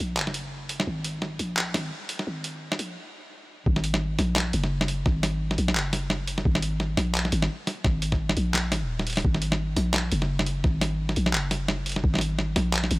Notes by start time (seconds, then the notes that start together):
0.00 A#1
0.17 F#1, clap
0.27 snare
0.34 closed hi-hat
0.69 closed hi-hat
0.80 snare
0.87 G#1
1.04 closed hi-hat
1.22 snare
1.39 A#1, closed hi-hat
1.57 clap
1.74 G#1, snare, closed hi-hat
2.09 closed hi-hat
2.19 snare
2.27 G#1
2.44 closed hi-hat
2.72 snare
2.79 A#1, closed hi-hat
3.66 G#1, kick
3.76 snare
3.84 closed hi-hat
3.94 snare
4.19 A#1, snare, closed hi-hat
4.36 clap, snare
4.53 F#1, closed hi-hat
4.64 snare
4.81 snare
4.88 closed hi-hat
5.06 G#1, kick, snare
5.23 snare, closed hi-hat
5.51 snare
5.58 A#1, closed hi-hat
5.68 snare
5.75 F#1, clap
5.93 snare, closed hi-hat
6.10 snare
6.27 closed hi-hat
6.38 snare
6.45 G#1, kick
6.55 snare
6.62 closed hi-hat
6.80 snare
6.97 A#1, snare, closed hi-hat
7.15 clap
7.25 snare
7.32 G#1, closed hi-hat
7.42 snare
7.67 snare, closed hi-hat
7.84 G#1, kick, snare
8.02 closed hi-hat
8.12 kick, snare
8.29 snare
8.37 A#1, closed hi-hat
8.54 clap, snare, closed hi-hat
8.72 G#1, snare, closed hi-hat
8.82 D#1
8.99 snare
9.07 closed hi-hat
9.10 closed hi-hat
9.13 closed hi-hat
9.16 snare, closed hi-hat
9.18 closed hi-hat
9.20 closed hi-hat
9.22 G#1, kick, closed hi-hat
9.35 snare
9.42 closed hi-hat
9.52 snare
9.77 A#1, snare, closed hi-hat
9.94 clap, snare
10.12 F#1, closed hi-hat
10.22 snare
10.39 snare
10.46 closed hi-hat
10.64 G#1, kick, snare
10.81 snare, closed hi-hat
11.09 snare
11.16 A#1, closed hi-hat
11.26 snare
11.33 F#1, clap
11.51 snare, closed hi-hat
11.68 snare
11.86 closed hi-hat
11.89 closed hi-hat
11.92 closed hi-hat
11.96 snare
12.04 G#1, kick
12.14 snare
12.15 snare
12.19 snare, closed hi-hat
12.39 snare
12.56 A#1, snare, closed hi-hat
12.73 clap
12.84 snare
12.91 G#1, closed hi-hat